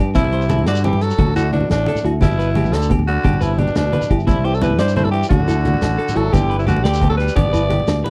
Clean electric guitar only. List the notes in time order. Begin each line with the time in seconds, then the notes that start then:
0.15 E4
0.33 C5
0.49 E4
0.68 D5
0.84 E4
1.19 F#4
1.37 A4
1.53 F#4
1.88 A4
2.04 F#4
2.22 G4
2.39 B4
2.56 G4
2.91 G4
3.24 G4
3.41 B4
3.59 G4
3.93 B4
4.10 G4
4.27 E4
4.44 C5
4.62 E4
4.79 D5
4.96 E4
5.30 F#4
5.48 A4
5.65 F#4
5.98 A4
6.15 F#4
6.32 G4
6.50 B4
6.66 G4
6.84 D5
7.01 G4
7.36 G4
7.53 B4
7.69 G4
8.04 B4